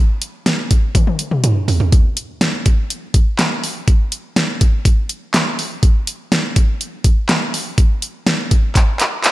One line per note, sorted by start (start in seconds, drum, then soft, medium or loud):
0.22 closed hi-hat medium
0.46 snare loud
0.46 closed hi-hat medium
0.71 kick loud
0.71 closed hi-hat medium
0.95 kick loud
0.95 closed hi-hat medium
0.95 high tom medium
1.07 high tom medium
1.19 closed hi-hat medium
1.31 mid tom medium
1.44 closed hi-hat medium
1.44 mid tom loud
1.68 floor tom loud
1.68 open hi-hat medium
1.80 floor tom loud
1.92 kick loud
1.92 closed hi-hat medium
2.17 closed hi-hat medium
2.41 snare loud
2.41 closed hi-hat medium
2.66 kick loud
2.66 closed hi-hat medium
2.90 closed hi-hat medium
3.14 kick loud
3.14 closed hi-hat medium
3.39 snare loud
3.39 clap loud
3.39 closed hi-hat medium
3.64 open hi-hat medium
3.88 kick loud
3.88 closed hi-hat medium
4.12 closed hi-hat medium
4.36 snare loud
4.36 closed hi-hat medium
4.61 kick loud
4.61 closed hi-hat medium
4.85 kick loud
4.85 closed hi-hat medium
5.09 closed hi-hat medium
5.34 snare loud
5.34 clap loud
5.34 closed hi-hat medium
5.59 open hi-hat medium
5.83 kick loud
5.83 closed hi-hat medium
6.07 closed hi-hat medium
6.32 snare loud
6.32 closed hi-hat medium
6.56 kick loud
6.56 closed hi-hat medium
6.81 closed hi-hat medium
7.04 kick medium
7.04 closed hi-hat medium
7.29 snare loud
7.29 clap loud
7.29 closed hi-hat medium
7.54 open hi-hat medium
7.78 kick loud
7.78 closed hi-hat medium
8.02 closed hi-hat medium
8.27 snare loud
8.27 closed hi-hat medium
8.51 kick loud
8.51 closed hi-hat medium
8.75 kick loud
8.75 clap medium
8.75 closed hi-hat medium
9.00 clap medium
9.00 closed hi-hat medium
9.24 clap medium
9.24 closed hi-hat medium